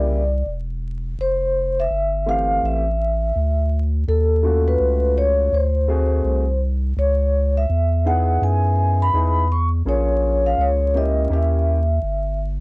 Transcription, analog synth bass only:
0, 0, Header, 1, 2, 480
1, 0, Start_track
1, 0, Tempo, 722892
1, 789, Time_signature, 4, 2, 24, 8
1, 8368, End_track
2, 0, Start_track
2, 0, Title_t, "Analog synth bass"
2, 0, Program_c, 0, 38
2, 0, Note_on_c, 0, 36, 103
2, 285, Note_off_c, 0, 36, 0
2, 308, Note_on_c, 0, 28, 95
2, 765, Note_off_c, 0, 28, 0
2, 789, Note_on_c, 0, 29, 110
2, 1245, Note_off_c, 0, 29, 0
2, 1266, Note_on_c, 0, 31, 85
2, 1724, Note_off_c, 0, 31, 0
2, 1746, Note_on_c, 0, 33, 99
2, 2204, Note_off_c, 0, 33, 0
2, 2230, Note_on_c, 0, 38, 93
2, 2686, Note_off_c, 0, 38, 0
2, 2708, Note_on_c, 0, 39, 111
2, 3165, Note_off_c, 0, 39, 0
2, 3188, Note_on_c, 0, 37, 94
2, 3645, Note_off_c, 0, 37, 0
2, 3667, Note_on_c, 0, 38, 98
2, 4124, Note_off_c, 0, 38, 0
2, 4145, Note_on_c, 0, 36, 96
2, 4603, Note_off_c, 0, 36, 0
2, 4627, Note_on_c, 0, 37, 109
2, 5084, Note_off_c, 0, 37, 0
2, 5110, Note_on_c, 0, 40, 90
2, 5566, Note_off_c, 0, 40, 0
2, 5589, Note_on_c, 0, 42, 90
2, 6045, Note_off_c, 0, 42, 0
2, 6066, Note_on_c, 0, 40, 87
2, 6524, Note_off_c, 0, 40, 0
2, 6543, Note_on_c, 0, 34, 112
2, 7002, Note_off_c, 0, 34, 0
2, 7025, Note_on_c, 0, 37, 92
2, 7483, Note_off_c, 0, 37, 0
2, 7504, Note_on_c, 0, 39, 104
2, 7963, Note_off_c, 0, 39, 0
2, 7985, Note_on_c, 0, 31, 92
2, 8368, Note_off_c, 0, 31, 0
2, 8368, End_track
0, 0, End_of_file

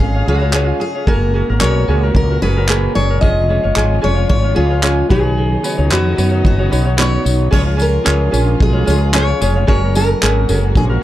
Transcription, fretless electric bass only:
0, 0, Header, 1, 2, 480
1, 0, Start_track
1, 0, Tempo, 538117
1, 954, Time_signature, 4, 2, 24, 8
1, 9841, End_track
2, 0, Start_track
2, 0, Title_t, "Fretless electric bass"
2, 0, Program_c, 0, 35
2, 0, Note_on_c, 0, 32, 84
2, 189, Note_off_c, 0, 32, 0
2, 244, Note_on_c, 0, 37, 88
2, 633, Note_off_c, 0, 37, 0
2, 955, Note_on_c, 0, 30, 95
2, 1260, Note_off_c, 0, 30, 0
2, 1334, Note_on_c, 0, 32, 77
2, 1420, Note_off_c, 0, 32, 0
2, 1443, Note_on_c, 0, 35, 89
2, 1636, Note_off_c, 0, 35, 0
2, 1677, Note_on_c, 0, 37, 82
2, 1873, Note_off_c, 0, 37, 0
2, 1915, Note_on_c, 0, 37, 87
2, 2112, Note_off_c, 0, 37, 0
2, 2160, Note_on_c, 0, 30, 79
2, 2552, Note_off_c, 0, 30, 0
2, 2641, Note_on_c, 0, 30, 77
2, 2836, Note_off_c, 0, 30, 0
2, 2879, Note_on_c, 0, 29, 92
2, 3183, Note_off_c, 0, 29, 0
2, 3252, Note_on_c, 0, 30, 78
2, 3339, Note_off_c, 0, 30, 0
2, 3355, Note_on_c, 0, 32, 79
2, 3552, Note_off_c, 0, 32, 0
2, 3603, Note_on_c, 0, 29, 82
2, 3797, Note_off_c, 0, 29, 0
2, 3835, Note_on_c, 0, 32, 90
2, 4032, Note_off_c, 0, 32, 0
2, 4080, Note_on_c, 0, 37, 93
2, 4472, Note_off_c, 0, 37, 0
2, 4558, Note_on_c, 0, 35, 94
2, 4951, Note_off_c, 0, 35, 0
2, 5159, Note_on_c, 0, 37, 85
2, 5252, Note_off_c, 0, 37, 0
2, 5271, Note_on_c, 0, 41, 80
2, 5470, Note_off_c, 0, 41, 0
2, 5513, Note_on_c, 0, 42, 73
2, 5711, Note_off_c, 0, 42, 0
2, 5751, Note_on_c, 0, 30, 94
2, 5950, Note_off_c, 0, 30, 0
2, 5998, Note_on_c, 0, 35, 91
2, 6390, Note_off_c, 0, 35, 0
2, 6470, Note_on_c, 0, 35, 80
2, 6669, Note_off_c, 0, 35, 0
2, 6716, Note_on_c, 0, 37, 102
2, 7109, Note_off_c, 0, 37, 0
2, 7193, Note_on_c, 0, 37, 81
2, 7391, Note_off_c, 0, 37, 0
2, 7430, Note_on_c, 0, 34, 81
2, 7629, Note_off_c, 0, 34, 0
2, 7677, Note_on_c, 0, 35, 94
2, 7873, Note_off_c, 0, 35, 0
2, 7916, Note_on_c, 0, 37, 88
2, 8309, Note_off_c, 0, 37, 0
2, 8398, Note_on_c, 0, 29, 84
2, 8593, Note_off_c, 0, 29, 0
2, 8638, Note_on_c, 0, 30, 98
2, 9030, Note_off_c, 0, 30, 0
2, 9121, Note_on_c, 0, 32, 78
2, 9314, Note_off_c, 0, 32, 0
2, 9358, Note_on_c, 0, 30, 79
2, 9553, Note_off_c, 0, 30, 0
2, 9596, Note_on_c, 0, 34, 90
2, 9791, Note_off_c, 0, 34, 0
2, 9841, End_track
0, 0, End_of_file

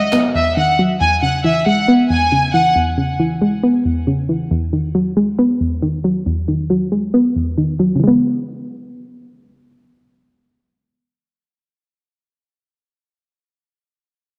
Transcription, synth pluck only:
0, 0, Header, 1, 2, 480
1, 0, Start_track
1, 0, Key_signature, 4, "major"
1, 0, Tempo, 437956
1, 1101, Time_signature, 4, 2, 24, 8
1, 15769, End_track
2, 0, Start_track
2, 0, Title_t, "Synth pluck"
2, 0, Program_c, 0, 84
2, 0, Note_on_c, 0, 40, 96
2, 0, Note_on_c, 0, 51, 84
2, 0, Note_on_c, 0, 54, 92
2, 0, Note_on_c, 0, 56, 78
2, 142, Note_on_c, 0, 59, 93
2, 370, Note_off_c, 0, 40, 0
2, 383, Note_on_c, 0, 40, 78
2, 609, Note_off_c, 0, 51, 0
2, 623, Note_on_c, 0, 51, 83
2, 850, Note_off_c, 0, 54, 0
2, 863, Note_on_c, 0, 54, 84
2, 1088, Note_off_c, 0, 40, 0
2, 1101, Note_on_c, 0, 40, 92
2, 1102, Note_off_c, 0, 51, 0
2, 1102, Note_off_c, 0, 54, 0
2, 1102, Note_off_c, 0, 56, 0
2, 1102, Note_off_c, 0, 59, 0
2, 1341, Note_on_c, 0, 49, 72
2, 1581, Note_on_c, 0, 52, 85
2, 1821, Note_on_c, 0, 56, 88
2, 2061, Note_on_c, 0, 59, 102
2, 2289, Note_off_c, 0, 40, 0
2, 2302, Note_on_c, 0, 40, 82
2, 2528, Note_off_c, 0, 49, 0
2, 2541, Note_on_c, 0, 49, 83
2, 2768, Note_off_c, 0, 52, 0
2, 2781, Note_on_c, 0, 52, 86
2, 3007, Note_off_c, 0, 40, 0
2, 3021, Note_on_c, 0, 40, 101
2, 3022, Note_off_c, 0, 56, 0
2, 3248, Note_off_c, 0, 49, 0
2, 3261, Note_off_c, 0, 59, 0
2, 3261, Note_on_c, 0, 49, 79
2, 3489, Note_off_c, 0, 52, 0
2, 3502, Note_on_c, 0, 52, 95
2, 3741, Note_on_c, 0, 56, 82
2, 3981, Note_on_c, 0, 59, 99
2, 4207, Note_off_c, 0, 40, 0
2, 4221, Note_on_c, 0, 40, 75
2, 4448, Note_off_c, 0, 49, 0
2, 4461, Note_on_c, 0, 49, 88
2, 4688, Note_off_c, 0, 52, 0
2, 4701, Note_on_c, 0, 52, 82
2, 4929, Note_off_c, 0, 40, 0
2, 4941, Note_off_c, 0, 49, 0
2, 4941, Note_off_c, 0, 52, 0
2, 4941, Note_off_c, 0, 56, 0
2, 4942, Note_off_c, 0, 59, 0
2, 4942, Note_on_c, 0, 40, 103
2, 5182, Note_on_c, 0, 51, 78
2, 5422, Note_on_c, 0, 54, 86
2, 5662, Note_on_c, 0, 56, 83
2, 5902, Note_on_c, 0, 59, 100
2, 6129, Note_off_c, 0, 40, 0
2, 6142, Note_on_c, 0, 40, 80
2, 6369, Note_off_c, 0, 51, 0
2, 6382, Note_on_c, 0, 51, 83
2, 6609, Note_off_c, 0, 54, 0
2, 6622, Note_on_c, 0, 54, 81
2, 6849, Note_off_c, 0, 40, 0
2, 6862, Note_off_c, 0, 56, 0
2, 6862, Note_on_c, 0, 40, 92
2, 7089, Note_off_c, 0, 51, 0
2, 7102, Note_off_c, 0, 59, 0
2, 7102, Note_on_c, 0, 51, 82
2, 7329, Note_off_c, 0, 54, 0
2, 7342, Note_on_c, 0, 54, 90
2, 7581, Note_on_c, 0, 56, 78
2, 7822, Note_on_c, 0, 59, 92
2, 8049, Note_off_c, 0, 40, 0
2, 8062, Note_on_c, 0, 40, 75
2, 8289, Note_off_c, 0, 51, 0
2, 8302, Note_on_c, 0, 51, 83
2, 8528, Note_off_c, 0, 54, 0
2, 8541, Note_on_c, 0, 54, 88
2, 8717, Note_on_c, 0, 49, 84
2, 8761, Note_on_c, 0, 52, 78
2, 8781, Note_off_c, 0, 54, 0
2, 8781, Note_off_c, 0, 56, 0
2, 8782, Note_off_c, 0, 40, 0
2, 8782, Note_off_c, 0, 51, 0
2, 8782, Note_off_c, 0, 59, 0
2, 8805, Note_on_c, 0, 56, 79
2, 8849, Note_on_c, 0, 59, 95
2, 13068, Note_off_c, 0, 49, 0
2, 13111, Note_off_c, 0, 52, 0
2, 13155, Note_off_c, 0, 56, 0
2, 13199, Note_off_c, 0, 59, 0
2, 15769, End_track
0, 0, End_of_file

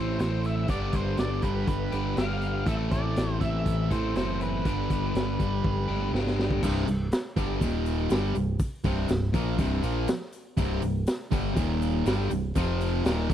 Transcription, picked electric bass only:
0, 0, Header, 1, 2, 480
1, 0, Start_track
1, 0, Key_signature, 0, "major"
1, 0, Tempo, 494234
1, 671, Time_signature, 4, 2, 24, 8
1, 12953, End_track
2, 0, Start_track
2, 0, Title_t, "Picked electric bass"
2, 0, Program_c, 0, 34
2, 0, Note_on_c, 0, 33, 70
2, 170, Note_off_c, 0, 33, 0
2, 185, Note_on_c, 0, 33, 86
2, 634, Note_off_c, 0, 33, 0
2, 667, Note_on_c, 0, 31, 82
2, 892, Note_off_c, 0, 31, 0
2, 906, Note_on_c, 0, 31, 89
2, 1132, Note_off_c, 0, 31, 0
2, 1146, Note_on_c, 0, 31, 86
2, 1372, Note_off_c, 0, 31, 0
2, 1385, Note_on_c, 0, 31, 80
2, 1611, Note_off_c, 0, 31, 0
2, 1624, Note_on_c, 0, 31, 78
2, 1851, Note_off_c, 0, 31, 0
2, 1868, Note_on_c, 0, 31, 82
2, 2093, Note_off_c, 0, 31, 0
2, 2111, Note_on_c, 0, 31, 91
2, 2558, Note_off_c, 0, 31, 0
2, 2588, Note_on_c, 0, 33, 83
2, 2814, Note_off_c, 0, 33, 0
2, 2829, Note_on_c, 0, 33, 80
2, 3055, Note_off_c, 0, 33, 0
2, 3078, Note_on_c, 0, 33, 84
2, 3300, Note_off_c, 0, 33, 0
2, 3311, Note_on_c, 0, 33, 82
2, 3536, Note_off_c, 0, 33, 0
2, 3551, Note_on_c, 0, 33, 86
2, 3776, Note_off_c, 0, 33, 0
2, 3794, Note_on_c, 0, 33, 84
2, 4018, Note_off_c, 0, 33, 0
2, 4044, Note_on_c, 0, 30, 89
2, 4486, Note_off_c, 0, 30, 0
2, 4518, Note_on_c, 0, 31, 83
2, 4740, Note_off_c, 0, 31, 0
2, 4759, Note_on_c, 0, 31, 86
2, 4981, Note_off_c, 0, 31, 0
2, 4999, Note_on_c, 0, 31, 83
2, 5221, Note_off_c, 0, 31, 0
2, 5240, Note_on_c, 0, 31, 77
2, 5461, Note_off_c, 0, 31, 0
2, 5479, Note_on_c, 0, 31, 84
2, 5701, Note_off_c, 0, 31, 0
2, 5720, Note_on_c, 0, 31, 75
2, 5941, Note_off_c, 0, 31, 0
2, 5952, Note_on_c, 0, 31, 83
2, 6399, Note_off_c, 0, 31, 0
2, 6437, Note_on_c, 0, 24, 90
2, 6660, Note_off_c, 0, 24, 0
2, 6679, Note_on_c, 0, 24, 77
2, 6901, Note_off_c, 0, 24, 0
2, 7151, Note_on_c, 0, 31, 91
2, 7376, Note_off_c, 0, 31, 0
2, 7395, Note_on_c, 0, 27, 101
2, 7840, Note_off_c, 0, 27, 0
2, 7871, Note_on_c, 0, 31, 94
2, 8096, Note_off_c, 0, 31, 0
2, 8108, Note_on_c, 0, 24, 79
2, 8333, Note_off_c, 0, 24, 0
2, 8587, Note_on_c, 0, 24, 94
2, 8812, Note_off_c, 0, 24, 0
2, 8823, Note_on_c, 0, 24, 83
2, 9050, Note_off_c, 0, 24, 0
2, 9070, Note_on_c, 0, 34, 90
2, 9294, Note_off_c, 0, 34, 0
2, 9313, Note_on_c, 0, 24, 93
2, 9535, Note_off_c, 0, 24, 0
2, 9545, Note_on_c, 0, 34, 89
2, 9771, Note_off_c, 0, 34, 0
2, 10266, Note_on_c, 0, 24, 90
2, 10491, Note_off_c, 0, 24, 0
2, 10510, Note_on_c, 0, 24, 87
2, 10733, Note_off_c, 0, 24, 0
2, 10994, Note_on_c, 0, 31, 85
2, 11215, Note_off_c, 0, 31, 0
2, 11232, Note_on_c, 0, 27, 98
2, 11677, Note_off_c, 0, 27, 0
2, 11711, Note_on_c, 0, 31, 91
2, 11934, Note_off_c, 0, 31, 0
2, 11951, Note_on_c, 0, 24, 73
2, 12173, Note_off_c, 0, 24, 0
2, 12193, Note_on_c, 0, 29, 85
2, 12638, Note_off_c, 0, 29, 0
2, 12670, Note_on_c, 0, 27, 90
2, 12893, Note_off_c, 0, 27, 0
2, 12914, Note_on_c, 0, 30, 89
2, 12953, Note_off_c, 0, 30, 0
2, 12953, End_track
0, 0, End_of_file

